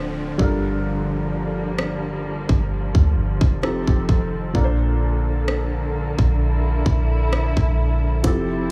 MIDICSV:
0, 0, Header, 1, 6, 480
1, 0, Start_track
1, 0, Tempo, 923077
1, 445, Time_signature, 4, 2, 24, 8
1, 4531, End_track
2, 0, Start_track
2, 0, Title_t, "Felt piano"
2, 0, Program_c, 0, 0
2, 0, Control_c, 0, 64, 127
2, 0, Note_on_c, 0, 50, 69
2, 0, Note_on_c, 0, 62, 67
2, 0, Note_on_c, 0, 64, 66
2, 0, Note_on_c, 0, 65, 65
2, 0, Note_on_c, 0, 72, 79
2, 181, Note_off_c, 0, 50, 0
2, 183, Note_off_c, 0, 62, 0
2, 186, Note_off_c, 0, 64, 0
2, 189, Note_off_c, 0, 65, 0
2, 192, Note_off_c, 0, 72, 0
2, 197, Note_on_c, 0, 55, 76
2, 202, Note_on_c, 0, 62, 66
2, 208, Note_on_c, 0, 65, 69
2, 211, Control_c, 0, 64, 0
2, 213, Note_on_c, 0, 69, 65
2, 219, Note_on_c, 0, 70, 81
2, 302, Control_c, 0, 64, 127
2, 1860, Note_off_c, 0, 55, 0
2, 1863, Note_off_c, 0, 62, 0
2, 1866, Note_off_c, 0, 65, 0
2, 1868, Note_off_c, 0, 69, 0
2, 1871, Note_off_c, 0, 70, 0
2, 1884, Note_on_c, 0, 53, 69
2, 1886, Note_on_c, 0, 60, 65
2, 1889, Note_on_c, 0, 63, 62
2, 1891, Control_c, 0, 64, 0
2, 1892, Note_on_c, 0, 67, 64
2, 1895, Note_on_c, 0, 69, 77
2, 1978, Control_c, 0, 64, 127
2, 2357, Note_on_c, 0, 46, 74
2, 2362, Note_on_c, 0, 58, 69
2, 2364, Note_off_c, 0, 53, 0
2, 2366, Note_off_c, 0, 60, 0
2, 2366, Note_off_c, 0, 69, 0
2, 2367, Note_off_c, 0, 63, 0
2, 2367, Note_on_c, 0, 62, 68
2, 2368, Note_off_c, 0, 67, 0
2, 2371, Control_c, 0, 64, 0
2, 2374, Note_on_c, 0, 69, 69
2, 2379, Note_on_c, 0, 70, 64
2, 2409, Note_off_c, 0, 70, 0
2, 2413, Note_on_c, 0, 72, 77
2, 2451, Control_c, 0, 64, 127
2, 4260, Note_off_c, 0, 46, 0
2, 4263, Note_off_c, 0, 58, 0
2, 4265, Note_off_c, 0, 62, 0
2, 4269, Note_off_c, 0, 69, 0
2, 4278, Note_on_c, 0, 53, 73
2, 4284, Note_on_c, 0, 60, 67
2, 4288, Note_off_c, 0, 72, 0
2, 4290, Note_on_c, 0, 64, 68
2, 4292, Control_c, 0, 64, 0
2, 4295, Note_on_c, 0, 67, 68
2, 4300, Note_on_c, 0, 69, 81
2, 4385, Control_c, 0, 64, 127
2, 4531, Note_off_c, 0, 53, 0
2, 4531, Note_off_c, 0, 60, 0
2, 4531, Note_off_c, 0, 64, 0
2, 4531, Note_off_c, 0, 67, 0
2, 4531, Note_off_c, 0, 69, 0
2, 4531, End_track
3, 0, Start_track
3, 0, Title_t, "String section"
3, 0, Program_c, 1, 48
3, 0, Note_on_c, 1, 50, 72
3, 0, Note_on_c, 1, 53, 64
3, 0, Note_on_c, 1, 57, 67
3, 0, Note_on_c, 1, 60, 64
3, 188, Note_off_c, 1, 57, 0
3, 188, Note_off_c, 1, 60, 0
3, 205, Note_on_c, 1, 55, 64
3, 206, Note_on_c, 1, 58, 69
3, 1864, Note_off_c, 1, 50, 0
3, 1868, Note_off_c, 1, 55, 0
3, 1869, Note_off_c, 1, 58, 0
3, 1883, Note_on_c, 1, 60, 63
3, 1883, Note_on_c, 1, 69, 68
3, 1884, Note_on_c, 1, 51, 73
3, 2359, Note_off_c, 1, 60, 0
3, 2360, Note_off_c, 1, 51, 0
3, 2363, Note_on_c, 1, 58, 69
3, 2364, Note_on_c, 1, 50, 74
3, 3327, Note_on_c, 1, 64, 86
3, 4265, Note_off_c, 1, 50, 0
3, 4265, Note_off_c, 1, 58, 0
3, 4276, Note_off_c, 1, 64, 0
3, 4286, Note_on_c, 1, 60, 80
3, 4287, Note_on_c, 1, 48, 76
3, 4287, Note_on_c, 1, 64, 67
3, 4531, Note_off_c, 1, 48, 0
3, 4531, Note_off_c, 1, 53, 0
3, 4531, Note_off_c, 1, 60, 0
3, 4531, Note_off_c, 1, 64, 0
3, 4531, Note_off_c, 1, 69, 0
3, 4531, End_track
4, 0, Start_track
4, 0, Title_t, "808-style bass"
4, 0, Program_c, 2, 38
4, 0, Note_on_c, 2, 26, 99
4, 186, Note_off_c, 2, 26, 0
4, 205, Note_on_c, 2, 31, 99
4, 1274, Note_off_c, 2, 31, 0
4, 1296, Note_on_c, 2, 31, 96
4, 1526, Note_off_c, 2, 31, 0
4, 1533, Note_on_c, 2, 38, 88
4, 1640, Note_off_c, 2, 38, 0
4, 1646, Note_on_c, 2, 31, 100
4, 1770, Note_off_c, 2, 31, 0
4, 1773, Note_on_c, 2, 29, 96
4, 2004, Note_off_c, 2, 29, 0
4, 2015, Note_on_c, 2, 29, 91
4, 2121, Note_off_c, 2, 29, 0
4, 2125, Note_on_c, 2, 29, 100
4, 2356, Note_off_c, 2, 29, 0
4, 2365, Note_on_c, 2, 34, 116
4, 3194, Note_off_c, 2, 34, 0
4, 3217, Note_on_c, 2, 34, 101
4, 3552, Note_off_c, 2, 34, 0
4, 3566, Note_on_c, 2, 34, 99
4, 3921, Note_off_c, 2, 34, 0
4, 3935, Note_on_c, 2, 34, 98
4, 4271, Note_off_c, 2, 34, 0
4, 4285, Note_on_c, 2, 29, 105
4, 4516, Note_off_c, 2, 29, 0
4, 4531, End_track
5, 0, Start_track
5, 0, Title_t, "Downlifter"
5, 0, Program_c, 3, 103
5, 0, Note_on_c, 3, 60, 81
5, 2365, Note_off_c, 3, 60, 0
5, 4531, End_track
6, 0, Start_track
6, 0, Title_t, "Drums"
6, 205, Note_on_c, 9, 36, 97
6, 257, Note_off_c, 9, 36, 0
6, 928, Note_on_c, 9, 37, 101
6, 980, Note_off_c, 9, 37, 0
6, 1296, Note_on_c, 9, 36, 88
6, 1348, Note_off_c, 9, 36, 0
6, 1533, Note_on_c, 9, 36, 91
6, 1585, Note_off_c, 9, 36, 0
6, 1774, Note_on_c, 9, 36, 96
6, 1826, Note_off_c, 9, 36, 0
6, 1889, Note_on_c, 9, 37, 117
6, 1941, Note_off_c, 9, 37, 0
6, 2015, Note_on_c, 9, 36, 85
6, 2067, Note_off_c, 9, 36, 0
6, 2126, Note_on_c, 9, 36, 89
6, 2178, Note_off_c, 9, 36, 0
6, 2365, Note_on_c, 9, 36, 112
6, 2417, Note_off_c, 9, 36, 0
6, 2850, Note_on_c, 9, 37, 107
6, 2902, Note_off_c, 9, 37, 0
6, 3216, Note_on_c, 9, 36, 88
6, 3268, Note_off_c, 9, 36, 0
6, 3567, Note_on_c, 9, 36, 94
6, 3619, Note_off_c, 9, 36, 0
6, 3810, Note_on_c, 9, 37, 107
6, 3862, Note_off_c, 9, 37, 0
6, 3935, Note_on_c, 9, 36, 88
6, 3987, Note_off_c, 9, 36, 0
6, 4285, Note_on_c, 9, 42, 65
6, 4286, Note_on_c, 9, 36, 112
6, 4337, Note_off_c, 9, 42, 0
6, 4338, Note_off_c, 9, 36, 0
6, 4531, End_track
0, 0, End_of_file